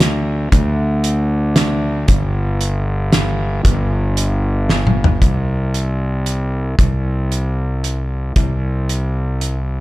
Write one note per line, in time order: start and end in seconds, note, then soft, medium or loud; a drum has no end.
0.00 0.49 D2 medium
0.00 snare medium
0.00 closed hi-hat medium
0.52 2.05 D2 medium
0.52 kick medium
0.52 closed hi-hat medium
1.04 closed hi-hat medium
1.56 snare medium
1.56 closed hi-hat medium
2.08 3.62 G1 medium
2.08 kick medium
2.08 closed hi-hat medium
2.61 closed hi-hat soft
3.13 snare medium
3.13 closed hi-hat medium
3.65 5.19 G1 medium
3.65 kick medium
3.65 closed hi-hat medium
4.17 closed hi-hat soft
4.69 snare soft
4.87 mid tom medium
5.04 floor tom medium
5.22 6.76 C2 medium
5.22 kick medium
5.22 closed hi-hat soft
5.74 closed hi-hat soft
6.26 closed hi-hat soft
6.79 8.34 C2 medium
6.79 kick medium
6.79 closed hi-hat soft
7.32 closed hi-hat soft
7.84 closed hi-hat soft
8.36 9.80 C2 medium
8.36 kick medium
8.36 closed hi-hat soft
8.89 closed hi-hat soft
9.41 closed hi-hat soft